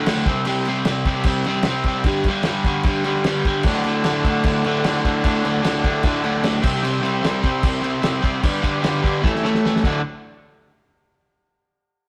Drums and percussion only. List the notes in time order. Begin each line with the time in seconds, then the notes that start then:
0.06 snare, crash
0.16 snare
0.26 kick, crash
0.45 crash
0.65 crash
0.85 snare, crash
1.05 kick, crash
1.24 kick, crash
1.44 crash
1.56 snare
1.63 snare, crash
1.83 kick, crash
2.04 kick, crash
2.24 kick, crash
2.43 snare, crash
2.64 kick, crash
2.83 kick, crash
3.04 crash
3.15 snare
3.24 snare, crash
3.45 kick, crash
3.63 kick, crash
3.84 crash
4.04 snare, crash
4.24 kick, crash
4.44 kick, crash
4.64 crash
4.84 snare, crash
4.97 snare
5.05 kick, crash
5.24 kick, crash
5.45 crash
5.64 snare, crash
5.84 kick, crash
6.03 kick, crash
6.24 crash
6.35 snare
6.44 snare, crash
6.63 kick, crash
6.85 crash
7.05 crash
7.24 snare, crash
7.43 kick, crash
7.63 kick, crash
7.84 crash
8.03 snare, crash
8.24 kick, crash
8.43 kick, crash
8.64 kick, crash
8.84 snare, crash
9.04 kick, crash
9.24 kick, snare
9.35 snare
9.45 snare
9.55 snare
9.66 snare
9.76 snare
9.84 kick, crash